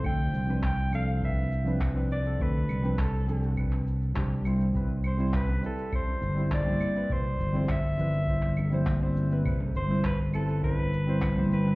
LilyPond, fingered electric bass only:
\new Staff \with { instrumentName = "Fingered electric bass" } { \clef bass \time 4/4 \key c \major \tempo 4 = 102 d,8 c,2.~ c,8 | d,8 c,2~ c,8 c,4 | c,4. r4 g,,4 r8 | c,8 g,,2.~ g,,8 |
c,8 g,,2.~ g,,8 | }